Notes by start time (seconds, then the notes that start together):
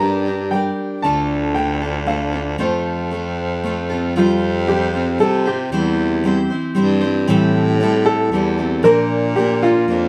Already playing: G2
0.00 G3 D4 G4 A#4 A#5
0.26 D4 G4 A#4
0.51 G3 D4 G4 A#4 G5
1.02 D2 D3 A3 D4 F4 A4 A5
1.54 A3 D4 F4 A4 G5
1.82 D4 F4 A4
2.06 A3 D4 F4 A4 F5
2.32 D4 F4 A4
2.58 F2 F3 A3 C4 F4 A4 C5
3.11 A3 C4 F4 A4
3.64 A3 C4 F4 A4
3.89 C4 F4 A4
4.16 F2 F3 G3 C4 F4 C5
4.67 G3 C4 F4 G4 C5
4.93 C4 F4 C5
5.19 C3 G3 C4 F4 A4 C5
5.46 C4 F4 G4 C5
5.72 E2 E3 G3 C4 E4 C5
6.24 G3 C4 E4 C5
6.50 C4 E4 C5
6.75 G2 G3 C4 E4 C5
7.01 C4 E4 C5
7.28 A2 E3 G3 C4 E4 A4
7.80 G3 C4 E4 A4
8.06 A4
8.31 E2 G3 C4 E4 A4
8.58 G3 C4 E4 A4
8.83 A#2 F3 A#3 D4 F4 A#4
9.36 A#3 D4 F4 G4 A#4
9.62 A#3 D4 F4 A#4
9.88 F2 A#3 D4 F4 A#4